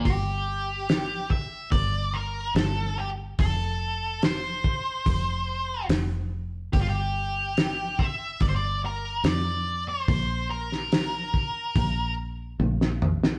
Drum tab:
HH |o---o---o---o---|o---o---o---o---|o---o---o---o---|o---o---o-------|
SD |----o-------o---|----o-------o---|----o-------o---|---oo--------o-o|
T1 |----------------|----------------|----------------|------------o---|
T2 |----------------|----------------|----------------|--------------o-|
BD |o-----o-o-------|o-----o-o-------|o-----o-o-------|o-----o-o-------|